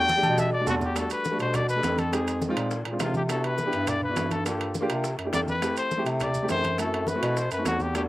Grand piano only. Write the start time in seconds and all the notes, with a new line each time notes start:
0.16 G3 A3 D4 G4
0.59 G3 A3 D4 F#4
0.95 G3 A3 D4 F#4
1.30 G3 A3 D4 F#4
1.75 G3 A3 D4 A4
2.11 G#3 C4 D#4 G4
2.48 G#3 C4 D#4 F4
2.91 G#3 C4 D4 F4
3.28 B3 D4 E4 F#4
3.65 B3 D4 E4 G4
4.09 B3 D4 E4 F#4
4.45 A#3 D4 F4 A4
4.81 A#3 D4 F4 G4
5.25 A#3 D4 E4 G4
5.61 A3 C4 E4 G4
5.97 A3 C4 E4 G4
6.42 A3 C4 E4 G4
6.78 A3 C4 E4 F#4
7.15 A3 C4 E4 F#4
7.58 A3 C4 D#4 F#4
7.93 G3 A3 D4 F#4